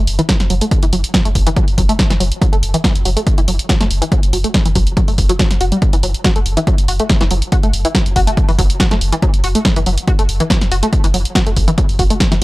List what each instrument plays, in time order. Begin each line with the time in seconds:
0.07 sub bass F#1, open hi-hat
0.19 synth arpeggio sound E3, closed hi-hat
0.29 synth arpeggio sound F#3, kick, snare, closed hi-hat
0.40 sub bass F#1, snare, closed hi-hat
0.50 sub bass F#1, synth arpeggio sound F#3, open hi-hat
0.61 synth arpeggio sound A3, closed hi-hat
0.71 kick, closed hi-hat
0.82 sub bass F#1, synth arpeggio sound E3, closed hi-hat
0.93 sub bass F#1, synth arpeggio sound F#3, open hi-hat
1.04 closed hi-hat
1.14 synth arpeggio sound F#3, kick, snare, closed hi-hat
1.25 sub bass F#1, synth arpeggio sound A3, closed hi-hat
1.35 sub bass F#1, kick, open hi-hat
1.47 synth arpeggio sound E3, closed hi-hat
1.56 synth arpeggio sound F#3, kick, closed hi-hat
1.68 sub bass F#1, open hi-hat
1.78 sub bass F#1, synth arpeggio sound F#3, kick, open hi-hat
1.89 synth arpeggio sound A3, closed hi-hat
1.99 kick, snare, closed hi-hat
2.10 sub bass F#1, synth arpeggio sound E3, snare, closed hi-hat
2.20 sub bass F#1, synth arpeggio sound F#3, open hi-hat
2.32 closed hi-hat
2.41 synth arpeggio sound F#3, kick, closed hi-hat
2.53 sub bass F#1, synth arpeggio sound A3, closed hi-hat
2.63 sub bass F#1, open hi-hat
2.74 synth arpeggio sound E3, closed hi-hat
2.84 synth arpeggio sound F#3, kick, snare, closed hi-hat
2.95 sub bass F#1, closed hi-hat
3.05 sub bass F#1, synth arpeggio sound F#3, open hi-hat
3.17 synth arpeggio sound A3, closed hi-hat
3.27 kick, closed hi-hat
3.38 sub bass F#1, synth arpeggio sound E3, closed hi-hat
3.48 sub bass F#1, synth arpeggio sound F#3, open hi-hat
3.59 closed hi-hat
3.69 synth arpeggio sound F#3, kick, snare, closed hi-hat
3.80 sub bass F#1, synth arpeggio sound A3, snare, closed hi-hat
3.90 sub bass F#1, open hi-hat
4.02 synth arpeggio sound E3, closed hi-hat
4.12 synth arpeggio sound F#3, kick, closed hi-hat
4.23 sub bass F#1, closed hi-hat
4.33 sub bass F#1, synth arpeggio sound F#3, open hi-hat
4.44 synth arpeggio sound A3, closed hi-hat
4.54 kick, snare, closed hi-hat
4.66 sub bass F#1, synth arpeggio sound E3, closed hi-hat
4.75 sub bass F#1, synth arpeggio sound F#3, kick, open hi-hat
4.87 closed hi-hat
4.97 synth arpeggio sound F#3, kick, closed hi-hat
5.08 sub bass F#1, synth arpeggio sound A3, open hi-hat
5.18 sub bass F#1, kick, open hi-hat
5.29 synth arpeggio sound F#3, closed hi-hat
5.39 synth arpeggio sound F#3, kick, snare, closed hi-hat
5.51 sub bass F#1, snare, closed hi-hat
5.61 sub bass F#1, synth arpeggio sound F#4, open hi-hat
5.72 synth arpeggio sound G3, closed hi-hat
5.82 kick, closed hi-hat
5.93 sub bass F#1, synth arpeggio sound E3, closed hi-hat
6.03 sub bass F#1, synth arpeggio sound F#3, open hi-hat
6.14 closed hi-hat
6.24 synth arpeggio sound F#4, kick, snare, closed hi-hat
6.36 sub bass F#1, synth arpeggio sound A3, closed hi-hat
6.46 sub bass F#1, open hi-hat
6.57 synth arpeggio sound E3, closed hi-hat
6.67 synth arpeggio sound F#3, kick, closed hi-hat
6.78 sub bass F#1, closed hi-hat
6.88 sub bass F#1, synth arpeggio sound F#4, open hi-hat
7.00 synth arpeggio sound A3, closed hi-hat
7.09 kick, snare, closed hi-hat
7.21 sub bass F#1, synth arpeggio sound E3, snare, closed hi-hat
7.31 sub bass F#1, synth arpeggio sound F#3, open hi-hat
7.42 closed hi-hat
7.52 synth arpeggio sound F#4, kick, closed hi-hat
7.63 sub bass F#1, synth arpeggio sound A3, closed hi-hat
7.73 sub bass F#1, open hi-hat
7.85 synth arpeggio sound E3, closed hi-hat
7.95 synth arpeggio sound F#3, kick, snare, closed hi-hat
8.06 sub bass F#1, closed hi-hat
8.16 sub bass F#1, synth arpeggio sound F#4, kick, open hi-hat
8.27 synth arpeggio sound A3, closed hi-hat
8.37 kick, closed hi-hat
8.48 sub bass F#1, synth arpeggio sound E3, open hi-hat
8.58 sub bass F#1, synth arpeggio sound F#3, kick, open hi-hat
8.70 closed hi-hat
8.80 synth arpeggio sound F#4, kick, snare, closed hi-hat
8.91 sub bass F#1, synth arpeggio sound A3, snare, closed hi-hat
9.01 sub bass F#1, open hi-hat
9.12 synth arpeggio sound E3, closed hi-hat
9.22 synth arpeggio sound F#3, kick, closed hi-hat
9.34 sub bass F#1, closed hi-hat
9.44 sub bass F#1, synth arpeggio sound F#4, open hi-hat
9.55 synth arpeggio sound A3, closed hi-hat
9.65 kick, snare, closed hi-hat
9.76 sub bass F#1, synth arpeggio sound E3, closed hi-hat
9.86 sub bass F#1, synth arpeggio sound F#3, open hi-hat
9.98 closed hi-hat
10.08 synth arpeggio sound F#4, kick, closed hi-hat
10.19 sub bass F#1, synth arpeggio sound A3, closed hi-hat
10.29 sub bass F#1, open hi-hat
10.40 synth arpeggio sound E3, closed hi-hat
10.50 synth arpeggio sound F#3, kick, snare, closed hi-hat
10.61 sub bass F#1, snare, closed hi-hat
10.71 sub bass F#1, synth arpeggio sound F#4, open hi-hat
10.83 synth arpeggio sound A3, closed hi-hat
10.93 kick, closed hi-hat
11.04 sub bass F#1, synth arpeggio sound E3, closed hi-hat
11.14 sub bass F#1, synth arpeggio sound F#3, open hi-hat
11.25 closed hi-hat
11.35 synth arpeggio sound F#4, kick, snare, closed hi-hat
11.46 sub bass F#1, synth arpeggio sound A3, closed hi-hat
11.56 sub bass F#1, kick, open hi-hat
11.68 synth arpeggio sound E3, closed hi-hat
11.78 synth arpeggio sound F#3, kick, closed hi-hat
11.89 sub bass F#1, open hi-hat
11.99 sub bass F#1, synth arpeggio sound F#4, kick, open hi-hat
12.10 synth arpeggio sound A3, closed hi-hat
12.20 kick, snare, closed hi-hat
12.31 sub bass F#1, synth arpeggio sound E3, snare, closed hi-hat